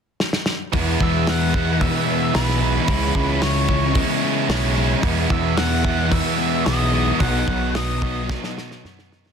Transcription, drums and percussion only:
0.20 snare medium
0.33 snare medium
0.46 snare medium
0.73 kick medium
0.73 open hi-hat medium
1.00 kick medium
1.27 snare loud
1.27 open hi-hat medium
1.54 kick medium
1.81 kick medium
1.81 open hi-hat medium
2.35 snare loud
2.35 open hi-hat medium
2.49 snare soft
2.88 kick medium
2.88 open hi-hat soft
3.15 kick medium
3.42 snare loud
3.42 open hi-hat medium
3.69 kick medium
3.95 kick medium
3.95 open hi-hat soft
4.50 snare loud
4.50 open hi-hat medium
5.03 kick medium
5.03 open hi-hat soft
5.30 kick medium
5.57 snare loud
5.57 open hi-hat medium
5.84 kick medium
6.12 kick medium
6.12 open hi-hat medium
6.66 snare loud
6.66 open hi-hat soft
7.20 kick medium
7.20 open hi-hat soft
7.48 kick medium
7.75 snare loud
7.75 open hi-hat medium
8.02 kick medium
8.29 kick medium
8.29 snare medium
8.44 snare medium
8.58 snare medium
8.71 snare medium
8.85 snare medium
8.99 snare medium
9.12 snare medium
9.26 snare medium

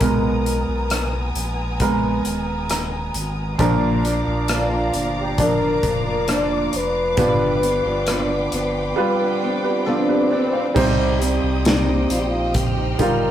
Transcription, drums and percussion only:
0.01 kick medium
0.01 closed hi-hat medium
0.46 closed hi-hat medium
0.90 cross-stick loud
0.90 closed hi-hat medium
1.35 closed hi-hat medium
1.80 kick medium
1.80 closed hi-hat medium
2.25 closed hi-hat medium
2.70 cross-stick medium
2.70 closed hi-hat medium
3.14 closed hi-hat medium
3.59 kick loud
3.59 closed hi-hat medium
4.05 closed hi-hat medium
4.48 cross-stick loud
4.48 closed hi-hat medium
4.94 closed hi-hat medium
5.38 kick medium
5.38 closed hi-hat medium
5.83 kick medium
5.83 closed hi-hat medium
6.28 cross-stick medium
6.28 closed hi-hat medium
6.73 closed hi-hat medium
7.17 kick loud
7.17 closed hi-hat medium
7.63 closed hi-hat medium
8.07 cross-stick medium
8.07 closed hi-hat medium
8.52 closed hi-hat medium
10.76 kick loud
10.76 crash medium
11.22 closed hi-hat medium
11.65 snare loud
11.65 closed hi-hat medium
12.10 closed hi-hat medium
12.54 kick medium
12.54 closed hi-hat medium
12.99 kick medium
12.99 closed hi-hat medium

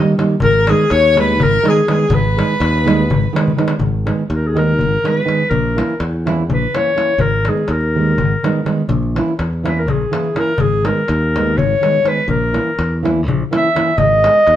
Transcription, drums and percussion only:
0.07 darbuka tek soft
0.19 darbuka tek medium
0.30 darbuka tek soft
0.40 darbuka dum medium
0.67 darbuka tek medium
0.90 darbuka tek medium
1.17 darbuka tek medium
1.40 darbuka dum medium
1.65 darbuka tek medium
1.77 darbuka tek soft
1.88 darbuka tek medium
1.99 darbuka tek soft
2.11 darbuka dum medium
2.39 darbuka tek medium
2.50 darbuka tek soft
2.61 darbuka tek medium
2.75 darbuka tek soft
2.88 darbuka tek medium
3.00 darbuka tek soft
3.11 darbuka dum medium
3.24 darbuka tek soft
3.36 darbuka tek medium
3.48 darbuka dum medium
3.59 darbuka tek medium
3.68 darbuka tek medium
3.79 darbuka dum medium
4.07 darbuka tek medium
4.19 darbuka tek soft
4.30 darbuka tek soft
4.44 darbuka tek soft
4.57 darbuka tek medium
4.68 darbuka tek soft
4.79 darbuka dum medium
4.92 darbuka tek soft
5.05 darbuka tek medium
5.29 darbuka tek medium
5.40 darbuka tek soft
5.51 darbuka dum medium
5.78 darbuka tek medium
5.90 darbuka tek soft
6.00 darbuka tek medium
6.13 darbuka tek soft
6.27 darbuka tek medium
6.38 darbuka tek soft
6.50 darbuka dum medium
6.62 darbuka tek soft
6.75 darbuka tek medium
6.98 darbuka tek medium
7.09 darbuka tek soft
7.19 darbuka dum medium
7.45 darbuka tek medium
7.57 darbuka tek soft
7.68 darbuka tek medium
7.81 darbuka tek soft
8.07 darbuka tek soft
8.18 darbuka dum medium
8.31 darbuka tek soft
8.44 darbuka tek medium
8.66 darbuka tek medium
8.78 darbuka tek soft
8.89 darbuka dum medium
9.03 darbuka tek soft
9.16 darbuka tek medium
9.28 darbuka tek soft
9.39 darbuka tek medium
9.53 darbuka tek soft
9.66 darbuka tek medium
9.77 darbuka tek soft
9.88 darbuka dum medium
10.02 darbuka tek soft
10.13 darbuka tek medium
10.24 darbuka tek soft
10.36 darbuka tek medium
10.48 darbuka tek soft
10.58 darbuka dum loud
10.85 darbuka tek medium
10.97 darbuka tek soft
11.08 darbuka tek medium
11.22 darbuka tek soft
11.36 darbuka tek medium
11.47 darbuka tek soft
11.58 darbuka dum medium
11.72 darbuka tek soft
11.83 darbuka tek medium
12.06 darbuka tek medium
12.18 darbuka tek soft
12.29 darbuka dum medium
12.54 darbuka tek medium
12.67 darbuka tek soft
12.79 darbuka tek medium
12.92 darbuka tek soft
13.05 darbuka tek medium
13.18 darbuka tek soft
13.28 darbuka dum medium
13.40 darbuka tek soft
13.53 darbuka tek medium
13.76 darbuka tek medium
13.98 darbuka dum loud
14.24 darbuka tek medium
14.35 darbuka tek soft
14.47 darbuka tek medium

